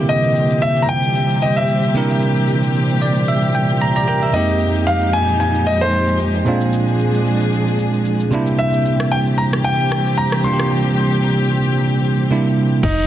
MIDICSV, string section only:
0, 0, Header, 1, 2, 480
1, 0, Start_track
1, 0, Tempo, 530973
1, 83, Time_signature, 4, 2, 24, 8
1, 11814, End_track
2, 0, Start_track
2, 0, Title_t, "String section"
2, 0, Program_c, 0, 48
2, 0, Note_on_c, 0, 46, 79
2, 0, Note_on_c, 0, 52, 71
2, 0, Note_on_c, 0, 55, 69
2, 0, Note_on_c, 0, 60, 69
2, 0, Note_on_c, 0, 67, 86
2, 3888, Note_off_c, 0, 52, 0
2, 3888, Note_off_c, 0, 55, 0
2, 3888, Note_off_c, 0, 60, 0
2, 3926, Note_on_c, 0, 53, 75
2, 3926, Note_on_c, 0, 63, 72
2, 3927, Note_on_c, 0, 56, 72
2, 5809, Note_off_c, 0, 67, 0
2, 5825, Note_off_c, 0, 53, 0
2, 5825, Note_off_c, 0, 63, 0
2, 5845, Note_on_c, 0, 53, 74
2, 5845, Note_on_c, 0, 62, 75
2, 5845, Note_on_c, 0, 68, 87
2, 7489, Note_off_c, 0, 56, 0
2, 7507, Note_off_c, 0, 53, 0
2, 7507, Note_off_c, 0, 68, 0
2, 7508, Note_off_c, 0, 62, 0
2, 7525, Note_on_c, 0, 60, 71
2, 7526, Note_on_c, 0, 55, 68
2, 7526, Note_on_c, 0, 67, 88
2, 7527, Note_on_c, 0, 52, 71
2, 11567, Note_off_c, 0, 46, 0
2, 11568, Note_off_c, 0, 60, 0
2, 11569, Note_off_c, 0, 52, 0
2, 11569, Note_off_c, 0, 55, 0
2, 11569, Note_off_c, 0, 67, 0
2, 11605, Note_on_c, 0, 51, 87
2, 11605, Note_on_c, 0, 58, 75
2, 11606, Note_on_c, 0, 55, 81
2, 11606, Note_on_c, 0, 56, 79
2, 11606, Note_on_c, 0, 65, 90
2, 11814, Note_off_c, 0, 51, 0
2, 11814, Note_off_c, 0, 55, 0
2, 11814, Note_off_c, 0, 56, 0
2, 11814, Note_off_c, 0, 58, 0
2, 11814, Note_off_c, 0, 65, 0
2, 11814, End_track
0, 0, End_of_file